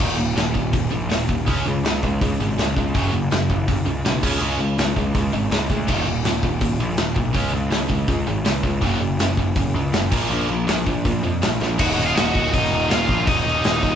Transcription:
0.00 D#1 D#2 A#2 D#3
0.17 D#1 D#2 A#2
0.35 D#1 D#2 A#2, snare, open hi-hat
0.54 D#1 D#2 A#2, kick
0.73 D#1 D#2 A#2, kick, open hi-hat
0.91 A#1 D#2 A#2
1.09 D#1 D#2 A#2, snare, open hi-hat
1.29 D#1 D#2 A#2, kick
1.46 C#2 C#3 G#3 C#4, kick, open hi-hat
1.66 C#2 C#3 G#3
1.84 C#2 C#3 G#3, snare, open hi-hat
2.03 C#2 C#3 G#3, kick
2.21 C#2 C#3 G#3, kick, open hi-hat
2.40 G#1 C#3 G#3
2.58 C#2 C#3 G#3, snare, open hi-hat
2.76 C#2 C#3 G#3, kick
2.94 F#1 F#2 C#3 F#3, kick, open hi-hat
3.12 F#1 F#2 C#3
3.30 F#1 F#2 C#3, snare, open hi-hat
3.50 F#1 F#2 C#3, kick
3.68 F#1 F#2 C#3, kick, open hi-hat
3.85 C#2 F#2 C#3
4.05 B1 F#2 C#3, snare, open hi-hat
4.23 C#2 C#3 G#3 C#4, kick, crash
4.41 C#2 C#3 G#3 C#4
4.59 C#2 C#3 G#3
4.78 C#2 C#3 G#3, snare, open hi-hat
4.96 C#2 C#3 G#3, kick
5.15 C#2 C#3 G#3, kick, open hi-hat
5.33 G#1 C#3 G#3
5.51 C#2 C#3 G#3, snare, open hi-hat
5.70 D2 C#3 G#3, kick
5.87 D#1 D#2 A#2 D#3, kick, crash
6.06 D#1 D#2 A#2
6.24 D#1 D#2 A#2, snare, open hi-hat
6.43 D#1 D#2 A#2, kick
6.61 D#1 D#2 A#2, kick, open hi-hat
6.80 A#1 D#2 A#2
6.97 D#1 D#2 A#2, snare, open hi-hat
7.16 B1 D#2 A#2, kick
7.34 C#2 C#3 G#3 C#4, kick, open hi-hat
7.53 C#2 C#3 G#3
7.70 C#2 C#3 G#3, snare, open hi-hat
7.89 C#2 C#3 G#3, kick
8.08 C#2 C#3 G#3, kick, open hi-hat
8.27 G#1 C#3 G#3
8.45 C#2 C#3 G#3, snare, open hi-hat
8.63 C#2 C#3 G#3, kick
8.81 F#1 F#2 C#3 F#3, kick, open hi-hat
9.01 F#1 F#2 C#3
9.19 F#1 F#2 C#3, snare, open hi-hat
9.37 F#1 F#2 C#3, kick
9.55 F#1 F#2 C#3, kick, open hi-hat
9.74 C#2 F#2 C#3
9.92 F#1 F#2 C#3, snare, open hi-hat
10.11 A#1 A#2 F3 A#3, kick, crash
10.30 A#1 A#2 F3 A#3
10.49 A#1 A#2 F3
10.67 A#1 A#2 F3, snare, open hi-hat
10.86 A#1 A#2 F3, kick
11.05 A#1 A#2 F3, kick, open hi-hat
11.23 F2 A#2 F3
11.42 A#1 A#2 F3, snare, open hi-hat
11.60 A#1 A#2 F3, snare
11.79 D#1 D#2 A#2 D#3 F#3 A#3 D#4 F#4 F#5, kick, crash
11.97 D#1
12.06 F4 F5
12.16 D#1 F#4 F#5, snare, open hi-hat
12.35 D#1, kick
12.53 D#1 D#4 D#5, kick, open hi-hat
12.71 D#1
12.89 D#1 F4 F5, snare, open hi-hat
13.09 A#1, kick
13.27 D#1 D#2 A#2 D#3 F#3 A#3 D#4 D#5, kick, open hi-hat
13.46 D#1
13.64 D#1, snare, open hi-hat
13.83 D#1, kick

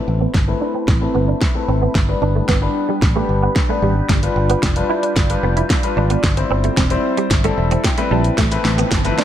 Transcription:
Already playing: A3 C4 E4 B4 A5 B5
0.07 A1, muted clean electric guitar stroke
0.21 B3
0.34 G1, muted clean electric guitar stroke, kick, snare
0.47 A3 C4 E4 B4
0.61 D4
0.74 C4
0.88 A1, muted clean electric guitar stroke, kick, snare
1.01 A3 C4 E4 B4
1.15 G1 B3
1.28 D4
1.41 muted clean electric guitar stroke, kick, snare
1.55 A3 C4 E4 B4
1.68 G#1 C4
1.82 B3
1.95 G1 D4 B4 G5 B5, kick, snare
2.08 G3 B3 D4 B4, muted clean electric guitar stroke
2.22 G1 D4
2.35 A3
2.49 G1 B3, kick, snare
2.62 G3 B3 D4 B4, muted clean electric guitar stroke
2.89 G3
3.02 A1, kick, snare
3.15 G3 A3 B3 D4 G4
3.29 G1, muted clean electric guitar stroke
3.42 B3
3.56 muted clean electric guitar stroke, kick, snare
3.69 G3 A3 B3 D4 B4
3.82 G#1 G3
4.09 G1 G3 F4 D5, kick, snare, closed hi-hat
4.22 G3 D4 F4 B4, closed hi-hat
4.36 G1, muted clean electric guitar stroke
4.50 B3, closed hi-hat
4.63 F1, muted clean electric guitar stroke, kick, snare, closed hi-hat
4.76 G3 D4 F4 B4, closed hi-hat
4.90 E4
5.03 D4, closed hi-hat
5.16 G1, muted clean electric guitar stroke, kick, snare, closed hi-hat
5.30 G3 D4 F4 B4, closed hi-hat
5.43 F1 B3
5.57 E4, closed hi-hat
5.70 muted clean electric guitar stroke, kick, snare, closed hi-hat
5.83 G3 D4 F4 B4, closed hi-hat
5.97 G#1 D4
6.10 B3, closed hi-hat
6.24 G1 C4 E4, kick, snare, closed hi-hat
6.37 G3 C4 E4 C5, muted clean electric guitar stroke, closed hi-hat
6.50 G1 C4
6.64 A3, closed hi-hat
6.77 E1 C4, kick, snare, closed hi-hat
6.90 G3 C4 E4 C5, muted clean electric guitar stroke, closed hi-hat
7.17 G3, closed hi-hat
7.31 G1, kick, snare, closed hi-hat
7.44 G3 A3 C4 E4 A4, closed hi-hat
7.58 E1 E5, muted clean electric guitar stroke
7.71 C4, closed hi-hat
7.84 G5, muted clean electric guitar stroke, kick, snare, closed hi-hat
7.98 G3 A3 C4 E4 B4, closed hi-hat
8.11 A#1 G3 A5
8.24 closed hi-hat
8.38 A1 A3 A5 B5, kick, snare, closed hi-hat, riser, shaker
8.51 A3 C4 E4 B4, closed hi-hat, shaker
8.65 A1, muted clean electric guitar stroke, snare, shaker
8.78 B3, closed hi-hat, shaker
8.91 G1, muted clean electric guitar stroke, kick, snare, closed hi-hat, shaker
9.05 A3 C4 E4 B4, closed hi-hat, shaker
9.18 D4, snare, shaker

